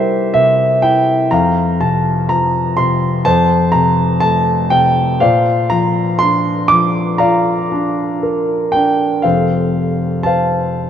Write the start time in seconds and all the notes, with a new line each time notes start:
Already playing: C3 G3 E4 G4 A#4 C5 E5 G5 A#5
0.34 C3 E5
0.82 E4 G5
1.31 F2 F5 A#5
1.80 C3 A5
2.29 F3 A#5
2.77 C3 C6
3.25 F2 C5 A5
3.72 C3 A#5
4.20 A3 A5
4.70 C3 G5
5.20 A#2 C5 D5 F5
5.70 F3 A#5
6.19 D4 C6
6.68 F3 D6
7.18 D5 F5 A#5
7.22 F4
7.72 D4
8.23 A#4
8.72 D4 G5
9.22 F1 F2 A4 C5 F5
10.23 C5 F5 A5